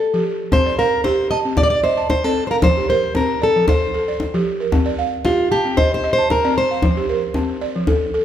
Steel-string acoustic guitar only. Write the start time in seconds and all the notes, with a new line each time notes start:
Already playing: A4
0.53 C5
0.79 A#4
1.04 C5
1.31 D#5
1.57 D5
1.63 D5
1.70 D5
1.84 C5
2.10 C5
2.24 A4
2.47 A#4 C5
2.64 C5
2.90 C5
3.17 A#4
3.43 A4
3.69 C5
5.25 F4
5.52 G4
5.77 C5
5.94 C5
6.13 C5
6.31 A#4
6.58 C5